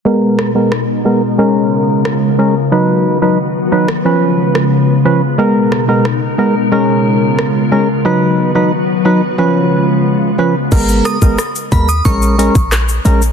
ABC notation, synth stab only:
X:1
M:4/4
L:1/16
Q:1/4=90
K:G#dor
V:1 name="Synth stab"
[G,B,A]3 [G,B,A] z2 [G,B,A] z [G,CA]6 [G,CA] z | [F,DB]3 [F,DB] z2 [F,DB] z [E,CB]6 [E,CB] z | [G,B,A]3 [G,B,A] z2 [G,B,A] z [G,CA]6 [G,CA] z | [F,DB]3 [F,DB] z2 [F,DB] z [E,CB]6 [E,CB] z |
[G,B,A]3 [G,B,A] z2 [G,B,A] z [G,CA]2 [G,CA] z3 [G,CA] z |]